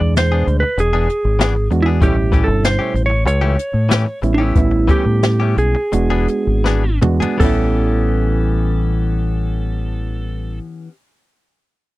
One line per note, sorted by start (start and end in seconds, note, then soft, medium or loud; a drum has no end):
0.00 0.44 E2 medium
0.00 0.63 B2 medium
0.00 0.63 G#3 medium
0.00 0.63 D4 medium
0.00 0.64 G#4 medium
0.00 0.17 D5 medium
0.00 muted clean electric guitar stroke soft
0.16 0.60 C5 medium
0.16 snare loud
0.16 closed hi-hat medium
0.32 0.46 B3 soft
0.32 0.46 D4 soft
0.32 0.47 G#4 medium
0.47 0.62 D2 medium
0.47 muted clean electric guitar stroke soft
0.47 closed hi-hat medium
0.60 0.80 B4 medium
0.60 muted clean electric guitar stroke soft
0.77 1.07 E1 medium
0.77 1.68 G#4 medium
0.77 muted clean electric guitar stroke soft
0.77 closed hi-hat medium
0.93 1.08 E3 medium
0.93 1.08 B3 medium
0.93 1.09 D4 medium
0.93 1.09 G#4 medium
1.09 muted clean electric guitar stroke soft
1.09 closed hi-hat medium
1.25 1.68 G#1 medium
1.39 1.55 E3 medium
1.39 1.55 B3 medium
1.39 1.55 D4 medium
1.39 1.54 G#4 medium
1.39 snare loud
1.39 closed hi-hat medium
1.55 muted clean electric guitar stroke soft
1.71 2.03 E2 medium
1.71 1.98 G#3 medium
1.71 1.98 B3 medium
1.71 1.99 D4 medium
1.71 1.99 F#4 medium
1.71 muted clean electric guitar stroke soft
1.71 closed hi-hat medium
1.82 1.88 E4 medium
1.82 2.01 G#4 medium
1.87 2.01 B3 soft
1.87 2.01 D4 soft
2.01 2.45 A1 medium
2.01 3.12 B2 medium
2.01 2.17 E3 medium
2.01 3.11 G3 medium
2.01 2.17 A3 medium
2.01 2.16 C#4 medium
2.01 3.12 C#4 medium
2.01 3.12 E4 medium
2.01 2.16 G4 medium
2.01 2.43 G4 medium
2.01 kick loud
2.01 closed hi-hat medium
2.17 muted clean electric guitar stroke soft
2.32 2.48 E3 medium
2.32 2.49 A3 medium
2.32 2.48 C#4 medium
2.32 2.47 G4 medium
2.32 kick medium
2.32 closed hi-hat medium
2.44 2.77 G1 loud
2.44 2.63 A4 medium
2.48 muted clean electric guitar stroke soft
2.64 3.05 C5 medium
2.64 snare loud
2.64 closed hi-hat medium
2.79 2.94 A3 soft
2.79 2.94 C#4 soft
2.79 2.95 G4 medium
2.94 3.26 A1 medium
2.94 muted clean electric guitar stroke soft
2.94 closed hi-hat medium
3.06 3.25 C#5 medium
3.10 muted clean electric guitar stroke soft
3.26 3.56 C#2 medium
3.26 4.19 C#5 loud
3.26 muted clean electric guitar stroke soft
3.26 closed hi-hat medium
3.41 3.56 E3 medium
3.41 3.56 A3 medium
3.41 3.57 C#4 medium
3.41 3.57 G4 medium
3.57 muted clean electric guitar stroke soft
3.57 closed hi-hat medium
3.74 4.04 A2 medium
3.89 4.06 E3 medium
3.89 4.06 A3 medium
3.89 4.06 C#4 medium
3.89 4.05 G4 medium
3.89 snare loud
3.89 closed hi-hat medium
4.06 muted clean electric guitar stroke medium
4.22 4.53 A1 medium
4.22 4.52 G3 medium
4.22 4.52 B3 medium
4.22 4.52 C#4 medium
4.22 4.52 E4 medium
4.22 muted clean electric guitar stroke soft
4.22 closed hi-hat medium
4.34 4.91 E4 medium
4.34 4.58 G4 medium
4.40 4.60 A3 soft
4.40 4.59 C#4 soft
4.55 4.87 A1 medium
4.55 5.75 G3 medium
4.55 5.76 B3 medium
4.55 5.76 C#4 medium
4.55 5.76 E4 medium
4.55 kick loud
4.55 closed hi-hat medium
4.71 muted clean electric guitar stroke soft
4.88 5.06 E3 medium
4.88 5.05 A3 medium
4.88 5.05 C#4 medium
4.88 5.04 G4 medium
4.88 5.54 G4 medium
4.88 kick medium
4.88 closed hi-hat medium
5.05 5.54 A2 medium
5.05 muted clean electric guitar stroke soft
5.23 snare medium
5.23 closed hi-hat medium
5.40 5.56 A3 soft
5.40 5.57 C#4 soft
5.40 5.57 G4 soft
5.57 5.74 B1 medium
5.57 6.99 G#4 medium
5.57 muted clean electric guitar stroke soft
5.57 closed hi-hat medium
5.75 muted clean electric guitar stroke soft
5.92 6.26 E1 medium
5.92 6.88 G#3 medium
5.92 6.89 B3 medium
5.92 6.89 D4 medium
5.92 6.89 F#4 medium
5.92 muted clean electric guitar stroke soft
5.92 closed hi-hat medium
6.10 6.27 E3 medium
6.10 6.28 B3 medium
6.10 6.28 D4 medium
6.10 6.28 G#4 medium
6.28 muted clean electric guitar stroke soft
6.28 closed hi-hat medium
6.47 6.98 G#1 medium
6.64 6.84 E3 medium
6.64 6.84 B3 medium
6.64 6.84 D4 medium
6.64 6.83 G#4 medium
6.64 snare medium
6.84 muted clean electric guitar stroke medium
7.02 7.20 E2 medium
7.02 7.36 G#3 medium
7.02 7.36 B3 medium
7.02 7.36 D4 medium
7.02 7.36 F#4 medium
7.02 muted clean electric guitar stroke soft
7.02 mid tom medium
7.20 7.39 B3 medium
7.20 7.40 D4 medium
7.20 7.40 G#4 medium
7.20 floor tom medium
7.37 10.59 A1 medium
7.37 10.88 E3 medium
7.37 10.56 G3 medium
7.37 10.58 B3 medium
7.37 10.91 B3 medium
7.37 10.58 A4 medium
7.37 kick medium
7.37 crash medium
7.42 10.61 C#4 medium
7.42 10.93 C#4 medium
7.42 10.63 E4 medium
7.42 10.95 G4 medium